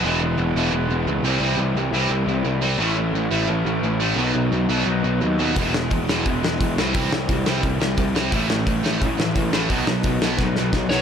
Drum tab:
HH |--------|--------|--------|--------|
SD |--------|--------|--------|--------|
BD |--------|--------|--------|--------|

HH |o-o-o-o-|o-o-o-o-|o-o-o-o-|o-o-----|
SD |-o-o-o-o|-o-o-o-o|-o-o-o-o|-o-ooooo|
BD |o-o-o-o-|o-o-o-o-|o-o-o-o-|o-o-o-o-|